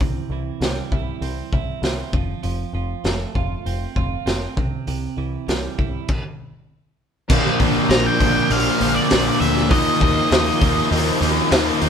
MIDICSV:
0, 0, Header, 1, 7, 480
1, 0, Start_track
1, 0, Tempo, 604839
1, 11, Time_signature, 4, 2, 24, 8
1, 9437, End_track
2, 0, Start_track
2, 0, Title_t, "Lead electric guitar"
2, 0, Program_c, 0, 29
2, 6267, Note_on_c, 0, 82, 100
2, 6399, Note_off_c, 0, 82, 0
2, 6399, Note_on_c, 0, 79, 89
2, 6760, Note_on_c, 0, 77, 90
2, 6764, Note_off_c, 0, 79, 0
2, 7105, Note_off_c, 0, 77, 0
2, 7108, Note_on_c, 0, 74, 89
2, 7441, Note_off_c, 0, 74, 0
2, 7463, Note_on_c, 0, 76, 86
2, 7699, Note_off_c, 0, 76, 0
2, 7702, Note_on_c, 0, 75, 86
2, 8626, Note_off_c, 0, 75, 0
2, 9437, End_track
3, 0, Start_track
3, 0, Title_t, "Tonewheel organ"
3, 0, Program_c, 1, 16
3, 5777, Note_on_c, 1, 72, 67
3, 5777, Note_on_c, 1, 82, 79
3, 5779, Note_on_c, 1, 62, 71
3, 7678, Note_off_c, 1, 72, 0
3, 7678, Note_off_c, 1, 82, 0
3, 7679, Note_off_c, 1, 62, 0
3, 7688, Note_on_c, 1, 82, 82
3, 7691, Note_on_c, 1, 65, 76
3, 7695, Note_on_c, 1, 75, 69
3, 9437, Note_off_c, 1, 65, 0
3, 9437, Note_off_c, 1, 75, 0
3, 9437, Note_off_c, 1, 82, 0
3, 9437, End_track
4, 0, Start_track
4, 0, Title_t, "Clean electric guitar"
4, 0, Program_c, 2, 27
4, 0, Note_on_c, 2, 52, 53
4, 0, Note_on_c, 2, 60, 57
4, 0, Note_on_c, 2, 64, 59
4, 3, Note_on_c, 2, 48, 61
4, 244, Note_off_c, 2, 52, 0
4, 253, Note_on_c, 2, 52, 57
4, 489, Note_off_c, 2, 64, 0
4, 495, Note_on_c, 2, 55, 57
4, 731, Note_on_c, 2, 64, 59
4, 966, Note_off_c, 2, 60, 0
4, 969, Note_on_c, 2, 60, 59
4, 1208, Note_off_c, 2, 64, 0
4, 1212, Note_off_c, 2, 48, 0
4, 1217, Note_on_c, 2, 64, 59
4, 1455, Note_off_c, 2, 60, 0
4, 1458, Note_off_c, 2, 52, 0
4, 1458, Note_on_c, 2, 60, 55
4, 1694, Note_on_c, 2, 53, 58
4, 1699, Note_off_c, 2, 55, 0
4, 1699, Note_off_c, 2, 64, 0
4, 1921, Note_off_c, 2, 53, 0
4, 1930, Note_on_c, 2, 53, 61
4, 2170, Note_off_c, 2, 53, 0
4, 2180, Note_on_c, 2, 53, 59
4, 2423, Note_on_c, 2, 57, 55
4, 2666, Note_on_c, 2, 65, 63
4, 2904, Note_off_c, 2, 60, 0
4, 2907, Note_on_c, 2, 60, 58
4, 3134, Note_off_c, 2, 65, 0
4, 3144, Note_on_c, 2, 65, 58
4, 3372, Note_off_c, 2, 60, 0
4, 3382, Note_on_c, 2, 60, 58
4, 3385, Note_off_c, 2, 53, 0
4, 3625, Note_off_c, 2, 60, 0
4, 3626, Note_off_c, 2, 65, 0
4, 3627, Note_on_c, 2, 48, 54
4, 3628, Note_off_c, 2, 57, 0
4, 3861, Note_off_c, 2, 48, 0
4, 3870, Note_on_c, 2, 48, 61
4, 4110, Note_on_c, 2, 52, 54
4, 4352, Note_on_c, 2, 55, 56
4, 4590, Note_on_c, 2, 64, 59
4, 4830, Note_off_c, 2, 64, 0
4, 4831, Note_off_c, 2, 52, 0
4, 4832, Note_off_c, 2, 48, 0
4, 4832, Note_off_c, 2, 55, 0
4, 9437, End_track
5, 0, Start_track
5, 0, Title_t, "Distorted electric guitar"
5, 0, Program_c, 3, 30
5, 5790, Note_on_c, 3, 46, 86
5, 5796, Note_on_c, 3, 50, 99
5, 5798, Note_on_c, 3, 53, 99
5, 5806, Note_on_c, 3, 58, 104
5, 5808, Note_on_c, 3, 62, 100
5, 6013, Note_off_c, 3, 46, 0
5, 6017, Note_off_c, 3, 50, 0
5, 6022, Note_on_c, 3, 46, 82
5, 6024, Note_off_c, 3, 53, 0
5, 6026, Note_on_c, 3, 50, 91
5, 6027, Note_on_c, 3, 53, 90
5, 6030, Note_off_c, 3, 58, 0
5, 6032, Note_off_c, 3, 62, 0
5, 6034, Note_on_c, 3, 58, 94
5, 6042, Note_on_c, 3, 62, 94
5, 6251, Note_off_c, 3, 46, 0
5, 6258, Note_off_c, 3, 50, 0
5, 6261, Note_on_c, 3, 46, 94
5, 6266, Note_off_c, 3, 53, 0
5, 6268, Note_on_c, 3, 50, 87
5, 6270, Note_on_c, 3, 53, 101
5, 6272, Note_off_c, 3, 62, 0
5, 6273, Note_off_c, 3, 58, 0
5, 6276, Note_on_c, 3, 58, 89
5, 6281, Note_on_c, 3, 62, 97
5, 6488, Note_off_c, 3, 46, 0
5, 6491, Note_off_c, 3, 50, 0
5, 6498, Note_on_c, 3, 46, 81
5, 6500, Note_on_c, 3, 50, 79
5, 6503, Note_off_c, 3, 53, 0
5, 6503, Note_off_c, 3, 58, 0
5, 6503, Note_off_c, 3, 62, 0
5, 6506, Note_on_c, 3, 53, 85
5, 6506, Note_on_c, 3, 58, 86
5, 6512, Note_on_c, 3, 62, 90
5, 6728, Note_off_c, 3, 46, 0
5, 6732, Note_off_c, 3, 50, 0
5, 6735, Note_off_c, 3, 53, 0
5, 6738, Note_on_c, 3, 46, 96
5, 6740, Note_off_c, 3, 58, 0
5, 6741, Note_on_c, 3, 50, 103
5, 6744, Note_off_c, 3, 62, 0
5, 6745, Note_on_c, 3, 53, 92
5, 6750, Note_on_c, 3, 58, 112
5, 6754, Note_on_c, 3, 62, 109
5, 6970, Note_off_c, 3, 46, 0
5, 6970, Note_off_c, 3, 50, 0
5, 6975, Note_off_c, 3, 53, 0
5, 6978, Note_off_c, 3, 58, 0
5, 6979, Note_on_c, 3, 46, 84
5, 6980, Note_on_c, 3, 50, 82
5, 6982, Note_off_c, 3, 62, 0
5, 6985, Note_on_c, 3, 53, 85
5, 6987, Note_on_c, 3, 58, 92
5, 6992, Note_on_c, 3, 62, 101
5, 7202, Note_off_c, 3, 46, 0
5, 7210, Note_off_c, 3, 50, 0
5, 7212, Note_on_c, 3, 46, 77
5, 7216, Note_off_c, 3, 53, 0
5, 7219, Note_off_c, 3, 62, 0
5, 7220, Note_on_c, 3, 50, 84
5, 7221, Note_off_c, 3, 58, 0
5, 7225, Note_on_c, 3, 53, 94
5, 7228, Note_on_c, 3, 62, 90
5, 7231, Note_on_c, 3, 58, 96
5, 7448, Note_off_c, 3, 46, 0
5, 7451, Note_off_c, 3, 50, 0
5, 7455, Note_off_c, 3, 53, 0
5, 7456, Note_off_c, 3, 58, 0
5, 7458, Note_on_c, 3, 46, 88
5, 7460, Note_on_c, 3, 50, 84
5, 7462, Note_off_c, 3, 62, 0
5, 7464, Note_on_c, 3, 53, 92
5, 7465, Note_on_c, 3, 58, 91
5, 7471, Note_on_c, 3, 62, 99
5, 7686, Note_off_c, 3, 46, 0
5, 7687, Note_off_c, 3, 50, 0
5, 7689, Note_off_c, 3, 53, 0
5, 7690, Note_off_c, 3, 58, 0
5, 7693, Note_off_c, 3, 62, 0
5, 7696, Note_on_c, 3, 51, 93
5, 7698, Note_on_c, 3, 53, 96
5, 7706, Note_on_c, 3, 63, 105
5, 7707, Note_on_c, 3, 58, 98
5, 7930, Note_off_c, 3, 51, 0
5, 7935, Note_off_c, 3, 53, 0
5, 7936, Note_off_c, 3, 58, 0
5, 7940, Note_on_c, 3, 51, 94
5, 7945, Note_on_c, 3, 53, 93
5, 7946, Note_on_c, 3, 58, 100
5, 7948, Note_off_c, 3, 63, 0
5, 7951, Note_on_c, 3, 63, 100
5, 8166, Note_off_c, 3, 51, 0
5, 8173, Note_off_c, 3, 53, 0
5, 8175, Note_off_c, 3, 58, 0
5, 8175, Note_on_c, 3, 51, 98
5, 8183, Note_on_c, 3, 53, 91
5, 8184, Note_on_c, 3, 58, 91
5, 8185, Note_off_c, 3, 63, 0
5, 8188, Note_on_c, 3, 63, 110
5, 8412, Note_off_c, 3, 51, 0
5, 8421, Note_off_c, 3, 53, 0
5, 8422, Note_off_c, 3, 58, 0
5, 8422, Note_on_c, 3, 51, 89
5, 8430, Note_off_c, 3, 63, 0
5, 8430, Note_on_c, 3, 53, 84
5, 8432, Note_on_c, 3, 58, 94
5, 8440, Note_on_c, 3, 63, 93
5, 8652, Note_off_c, 3, 51, 0
5, 8655, Note_off_c, 3, 53, 0
5, 8662, Note_off_c, 3, 58, 0
5, 8662, Note_on_c, 3, 51, 94
5, 8665, Note_on_c, 3, 53, 107
5, 8667, Note_off_c, 3, 63, 0
5, 8672, Note_on_c, 3, 58, 94
5, 8677, Note_on_c, 3, 63, 102
5, 8894, Note_off_c, 3, 51, 0
5, 8895, Note_off_c, 3, 53, 0
5, 8899, Note_off_c, 3, 58, 0
5, 8900, Note_off_c, 3, 63, 0
5, 8904, Note_on_c, 3, 51, 92
5, 8905, Note_on_c, 3, 53, 88
5, 8908, Note_on_c, 3, 58, 91
5, 8910, Note_on_c, 3, 63, 93
5, 9127, Note_off_c, 3, 51, 0
5, 9134, Note_off_c, 3, 53, 0
5, 9137, Note_on_c, 3, 51, 85
5, 9140, Note_off_c, 3, 58, 0
5, 9143, Note_off_c, 3, 63, 0
5, 9144, Note_on_c, 3, 53, 93
5, 9149, Note_on_c, 3, 58, 87
5, 9152, Note_on_c, 3, 63, 92
5, 9367, Note_off_c, 3, 51, 0
5, 9371, Note_off_c, 3, 53, 0
5, 9376, Note_on_c, 3, 51, 82
5, 9378, Note_off_c, 3, 58, 0
5, 9378, Note_off_c, 3, 63, 0
5, 9380, Note_on_c, 3, 53, 89
5, 9387, Note_on_c, 3, 58, 87
5, 9388, Note_on_c, 3, 63, 97
5, 9437, Note_off_c, 3, 51, 0
5, 9437, Note_off_c, 3, 53, 0
5, 9437, Note_off_c, 3, 58, 0
5, 9437, Note_off_c, 3, 63, 0
5, 9437, End_track
6, 0, Start_track
6, 0, Title_t, "Picked electric bass"
6, 0, Program_c, 4, 34
6, 1, Note_on_c, 4, 36, 72
6, 160, Note_off_c, 4, 36, 0
6, 235, Note_on_c, 4, 36, 66
6, 396, Note_off_c, 4, 36, 0
6, 479, Note_on_c, 4, 36, 73
6, 639, Note_off_c, 4, 36, 0
6, 725, Note_on_c, 4, 36, 74
6, 883, Note_off_c, 4, 36, 0
6, 962, Note_on_c, 4, 36, 79
6, 1121, Note_off_c, 4, 36, 0
6, 1208, Note_on_c, 4, 36, 70
6, 1366, Note_off_c, 4, 36, 0
6, 1443, Note_on_c, 4, 36, 72
6, 1603, Note_off_c, 4, 36, 0
6, 1685, Note_on_c, 4, 29, 66
6, 1845, Note_off_c, 4, 29, 0
6, 1932, Note_on_c, 4, 29, 77
6, 2090, Note_off_c, 4, 29, 0
6, 2167, Note_on_c, 4, 29, 73
6, 2327, Note_off_c, 4, 29, 0
6, 2413, Note_on_c, 4, 29, 72
6, 2571, Note_off_c, 4, 29, 0
6, 2658, Note_on_c, 4, 29, 76
6, 2815, Note_off_c, 4, 29, 0
6, 2901, Note_on_c, 4, 29, 73
6, 3058, Note_off_c, 4, 29, 0
6, 3140, Note_on_c, 4, 29, 72
6, 3297, Note_off_c, 4, 29, 0
6, 3377, Note_on_c, 4, 29, 73
6, 3535, Note_off_c, 4, 29, 0
6, 3622, Note_on_c, 4, 36, 68
6, 3779, Note_off_c, 4, 36, 0
6, 3867, Note_on_c, 4, 36, 75
6, 4023, Note_off_c, 4, 36, 0
6, 4103, Note_on_c, 4, 36, 67
6, 4260, Note_off_c, 4, 36, 0
6, 4348, Note_on_c, 4, 36, 70
6, 4503, Note_off_c, 4, 36, 0
6, 4590, Note_on_c, 4, 36, 74
6, 4745, Note_off_c, 4, 36, 0
6, 5790, Note_on_c, 4, 34, 95
6, 5936, Note_off_c, 4, 34, 0
6, 6032, Note_on_c, 4, 34, 88
6, 6177, Note_off_c, 4, 34, 0
6, 6262, Note_on_c, 4, 34, 92
6, 6411, Note_off_c, 4, 34, 0
6, 6512, Note_on_c, 4, 34, 86
6, 6657, Note_off_c, 4, 34, 0
6, 6746, Note_on_c, 4, 34, 97
6, 6893, Note_off_c, 4, 34, 0
6, 6989, Note_on_c, 4, 34, 91
6, 7135, Note_off_c, 4, 34, 0
6, 7235, Note_on_c, 4, 34, 91
6, 7378, Note_off_c, 4, 34, 0
6, 7465, Note_on_c, 4, 38, 84
6, 7702, Note_off_c, 4, 38, 0
6, 7702, Note_on_c, 4, 39, 96
6, 7848, Note_off_c, 4, 39, 0
6, 7939, Note_on_c, 4, 39, 85
6, 8086, Note_off_c, 4, 39, 0
6, 8186, Note_on_c, 4, 39, 92
6, 8330, Note_off_c, 4, 39, 0
6, 8423, Note_on_c, 4, 39, 91
6, 8568, Note_off_c, 4, 39, 0
6, 8660, Note_on_c, 4, 39, 101
6, 8805, Note_off_c, 4, 39, 0
6, 8897, Note_on_c, 4, 39, 88
6, 9043, Note_off_c, 4, 39, 0
6, 9137, Note_on_c, 4, 39, 98
6, 9282, Note_off_c, 4, 39, 0
6, 9379, Note_on_c, 4, 39, 83
6, 9437, Note_off_c, 4, 39, 0
6, 9437, End_track
7, 0, Start_track
7, 0, Title_t, "Drums"
7, 1, Note_on_c, 9, 46, 43
7, 6, Note_on_c, 9, 36, 90
7, 81, Note_off_c, 9, 46, 0
7, 85, Note_off_c, 9, 36, 0
7, 488, Note_on_c, 9, 46, 42
7, 494, Note_on_c, 9, 38, 87
7, 567, Note_off_c, 9, 46, 0
7, 574, Note_off_c, 9, 38, 0
7, 729, Note_on_c, 9, 36, 65
7, 809, Note_off_c, 9, 36, 0
7, 969, Note_on_c, 9, 46, 42
7, 1048, Note_off_c, 9, 46, 0
7, 1211, Note_on_c, 9, 36, 72
7, 1290, Note_off_c, 9, 36, 0
7, 1452, Note_on_c, 9, 46, 41
7, 1458, Note_on_c, 9, 38, 86
7, 1531, Note_off_c, 9, 46, 0
7, 1537, Note_off_c, 9, 38, 0
7, 1692, Note_on_c, 9, 36, 87
7, 1772, Note_off_c, 9, 36, 0
7, 1931, Note_on_c, 9, 46, 41
7, 2011, Note_off_c, 9, 46, 0
7, 2415, Note_on_c, 9, 46, 38
7, 2421, Note_on_c, 9, 38, 92
7, 2494, Note_off_c, 9, 46, 0
7, 2500, Note_off_c, 9, 38, 0
7, 2661, Note_on_c, 9, 36, 66
7, 2740, Note_off_c, 9, 36, 0
7, 2908, Note_on_c, 9, 46, 44
7, 2987, Note_off_c, 9, 46, 0
7, 3144, Note_on_c, 9, 36, 73
7, 3223, Note_off_c, 9, 36, 0
7, 3386, Note_on_c, 9, 46, 43
7, 3392, Note_on_c, 9, 38, 90
7, 3465, Note_off_c, 9, 46, 0
7, 3472, Note_off_c, 9, 38, 0
7, 3629, Note_on_c, 9, 36, 86
7, 3708, Note_off_c, 9, 36, 0
7, 3867, Note_on_c, 9, 46, 43
7, 3947, Note_off_c, 9, 46, 0
7, 4352, Note_on_c, 9, 46, 42
7, 4359, Note_on_c, 9, 38, 88
7, 4432, Note_off_c, 9, 46, 0
7, 4438, Note_off_c, 9, 38, 0
7, 4593, Note_on_c, 9, 36, 67
7, 4672, Note_off_c, 9, 36, 0
7, 4828, Note_on_c, 9, 49, 72
7, 4832, Note_on_c, 9, 36, 87
7, 4908, Note_off_c, 9, 49, 0
7, 4911, Note_off_c, 9, 36, 0
7, 5790, Note_on_c, 9, 49, 124
7, 5793, Note_on_c, 9, 36, 108
7, 5870, Note_off_c, 9, 49, 0
7, 5872, Note_off_c, 9, 36, 0
7, 5921, Note_on_c, 9, 38, 33
7, 6000, Note_off_c, 9, 38, 0
7, 6028, Note_on_c, 9, 46, 64
7, 6031, Note_on_c, 9, 36, 88
7, 6107, Note_off_c, 9, 46, 0
7, 6111, Note_off_c, 9, 36, 0
7, 6270, Note_on_c, 9, 46, 79
7, 6276, Note_on_c, 9, 38, 117
7, 6349, Note_off_c, 9, 46, 0
7, 6356, Note_off_c, 9, 38, 0
7, 6512, Note_on_c, 9, 36, 83
7, 6513, Note_on_c, 9, 46, 57
7, 6591, Note_off_c, 9, 36, 0
7, 6592, Note_off_c, 9, 46, 0
7, 6748, Note_on_c, 9, 46, 86
7, 6827, Note_off_c, 9, 46, 0
7, 6989, Note_on_c, 9, 46, 68
7, 7068, Note_off_c, 9, 46, 0
7, 7223, Note_on_c, 9, 46, 91
7, 7230, Note_on_c, 9, 38, 112
7, 7303, Note_off_c, 9, 46, 0
7, 7309, Note_off_c, 9, 38, 0
7, 7471, Note_on_c, 9, 46, 68
7, 7551, Note_off_c, 9, 46, 0
7, 7594, Note_on_c, 9, 38, 34
7, 7674, Note_off_c, 9, 38, 0
7, 7703, Note_on_c, 9, 46, 89
7, 7705, Note_on_c, 9, 36, 116
7, 7783, Note_off_c, 9, 46, 0
7, 7784, Note_off_c, 9, 36, 0
7, 7946, Note_on_c, 9, 36, 89
7, 7946, Note_on_c, 9, 46, 71
7, 8025, Note_off_c, 9, 36, 0
7, 8026, Note_off_c, 9, 46, 0
7, 8187, Note_on_c, 9, 46, 82
7, 8194, Note_on_c, 9, 38, 116
7, 8267, Note_off_c, 9, 46, 0
7, 8273, Note_off_c, 9, 38, 0
7, 8422, Note_on_c, 9, 46, 63
7, 8425, Note_on_c, 9, 36, 81
7, 8501, Note_off_c, 9, 46, 0
7, 8504, Note_off_c, 9, 36, 0
7, 8668, Note_on_c, 9, 46, 91
7, 8747, Note_off_c, 9, 46, 0
7, 8906, Note_on_c, 9, 46, 66
7, 8985, Note_off_c, 9, 46, 0
7, 9138, Note_on_c, 9, 46, 89
7, 9144, Note_on_c, 9, 38, 118
7, 9217, Note_off_c, 9, 46, 0
7, 9224, Note_off_c, 9, 38, 0
7, 9375, Note_on_c, 9, 46, 62
7, 9437, Note_off_c, 9, 46, 0
7, 9437, End_track
0, 0, End_of_file